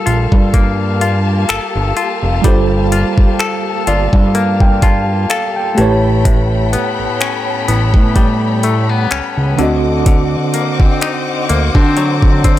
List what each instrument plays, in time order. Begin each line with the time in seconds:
Already playing: tine electric piano G3 F4 A4 A#4, clean electric guitar G3 A4, string section A#3 G4 F5 A5
0.06 analog synth bass A#1, clean electric guitar F4, closed hi-hat
0.32 analog synth bass G2, kick
0.54 clean electric guitar A#3, kick, closed hi-hat
1.01 clean electric guitar F4, closed hi-hat
1.49 analog synth bass G1, clean electric guitar A4, finger snap, closed hi-hat
1.75 analog synth bass G1
1.97 clean electric guitar F4, closed hi-hat
2.23 analog synth bass F1
2.42 analog synth bass G1, tine electric piano G3 F4, clean electric guitar G3, kick, closed hi-hat
2.46 tine electric piano A4 C5
2.92 clean electric guitar F4, closed hi-hat
3.18 analog synth bass G1, kick
3.39 clean electric guitar A4, finger snap, closed hi-hat
3.87 analog synth bass G1, clean electric guitar F4, tine electric piano D5, closed hi-hat
4.13 analog synth bass G2, kick
4.35 clean electric guitar A#3, tine electric piano F5, closed hi-hat
4.60 tine electric piano G5, kick
4.82 clean electric guitar F4, tine electric piano A5, kick, closed hi-hat
5.30 clean electric guitar A4, tine electric piano F5, finger snap, closed hi-hat
5.56 tine electric piano G5
5.75 analog synth bass A1, clean electric guitar A2, tine electric piano A3 G4 A5, string section A4 C#5 G5 B5, closed hi-hat
5.79 tine electric piano B4 C#5
6.25 clean electric guitar A2, kick, closed hi-hat
6.73 clean electric guitar B3, closed hi-hat
6.99 analog synth bass A1
7.21 clean electric guitar C#4, finger snap, closed hi-hat
7.68 analog synth bass A1, clean electric guitar B3, closed hi-hat
7.94 analog synth bass A2, kick
8.16 clean electric guitar G3, kick, closed hi-hat
8.63 clean electric guitar A3, closed hi-hat
8.89 clean electric guitar B3
9.11 analog synth bass C#2, clean electric guitar C#4, finger snap, closed hi-hat
9.38 analog synth bass C#2
9.56 analog synth bass D2, tine electric piano D3 C4, clean electric guitar D3, string section C5 D#5 F#5 D6, closed hi-hat
9.60 tine electric piano F#4 D#5
10.06 clean electric guitar D3, kick, closed hi-hat
10.54 clean electric guitar A#3, closed hi-hat
10.80 analog synth bass D2, clean electric guitar C4, kick
11.01 clean electric guitar D#4, finger snap, closed hi-hat
11.49 analog synth bass D2, clean electric guitar A#3, closed hi-hat
11.75 analog synth bass D3, clean electric guitar C4, kick
11.97 clean electric guitar F#3, closed hi-hat
12.22 kick
12.44 clean electric guitar C4, kick, closed hi-hat